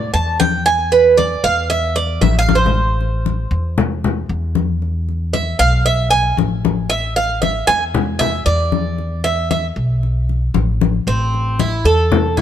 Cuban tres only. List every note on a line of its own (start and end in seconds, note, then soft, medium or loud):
0.00 0.10 D5 loud
0.14 0.39 A5 medium
0.40 0.65 G5 loud
0.66 0.91 G#5 loud
0.92 1.17 B4 medium
1.17 1.43 D5 medium
1.44 1.69 F5 loud
1.70 1.95 E5 medium
1.96 2.21 D5 medium
2.22 2.38 E5 medium
2.39 2.55 F5 loud
2.55 3.82 C5 medium
5.33 5.59 E5 medium
5.59 5.85 F5 loud
5.86 6.10 E5 loud
6.11 6.36 G#5 loud
6.90 7.15 E5 medium
7.16 7.41 F5 loud
7.42 7.67 E5 medium
7.67 7.83 G#5 loud
8.19 8.45 E5 loud
8.46 9.20 D5 medium
9.24 9.50 E5 medium
9.51 9.66 E5 medium
11.08 11.58 C4 medium
11.60 11.85 E4 medium
11.85 12.36 A4 medium
12.37 12.41 E4 medium